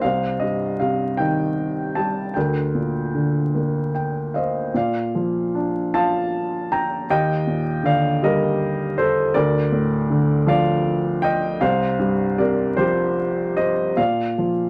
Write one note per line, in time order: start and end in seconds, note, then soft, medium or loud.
0.02 2.32 C2 soft
0.02 1.15 C5 soft
0.02 0.42 F5 medium
0.39 1.93 G2 soft
0.39 0.76 D#5 medium
0.80 2.32 C3 soft
0.80 1.20 F5 medium
1.17 2.32 D#3 soft
1.17 1.98 G5 medium
1.95 2.35 G3 soft
1.95 2.36 A5 medium
2.34 4.71 D2 medium
2.34 3.91 A#4 soft
2.34 3.89 G5 soft
2.75 4.30 A#2 soft
3.15 4.71 D3 soft
3.55 4.71 A#3 soft
3.95 4.32 G5 soft
4.34 4.72 C5 soft
4.34 4.76 D#5 soft
4.34 4.72 F5 soft
4.74 7.05 A#2 medium
4.74 5.90 D5 soft
4.74 5.94 F5 medium
5.15 6.67 F3 soft
5.55 7.05 D4 soft
5.94 7.05 F4 soft
5.94 6.68 F5 medium
5.94 6.67 A5 medium
6.72 7.06 G5 medium
6.72 7.07 A#5 medium
7.10 9.32 D#2 medium
7.10 7.81 D#5 medium
7.10 7.81 G5 medium
7.47 8.94 A#2 soft
7.83 9.31 D3 soft
7.83 8.20 D5 soft
7.83 8.24 F5 medium
8.23 9.32 G3 medium
8.23 8.95 A#4 medium
8.23 9.01 D#5 medium
8.98 9.33 A4 soft
8.98 9.33 C5 medium
9.34 11.58 D2 medium
9.34 10.43 A#4 medium
9.34 10.48 D5 medium
9.72 11.19 A2 soft
10.10 11.58 D3 soft
10.47 11.58 F3 medium
10.47 11.20 D5 medium
10.47 11.26 F5 medium
11.22 11.59 D#5 medium
11.22 11.58 G5 medium
11.61 13.93 C2 medium
11.61 12.36 C5 medium
11.61 12.41 F5 medium
11.99 13.53 G2 soft
12.38 13.93 C3 soft
12.38 12.76 A#4 medium
12.38 12.79 D5 medium
12.77 13.94 F3 soft
12.77 13.54 G4 medium
12.77 13.56 C5 medium
13.57 13.95 C5 soft
13.57 13.98 D#5 medium
13.97 14.70 A#2 medium
13.97 14.70 D5 medium
13.97 14.70 F5 medium
14.38 14.70 F3 soft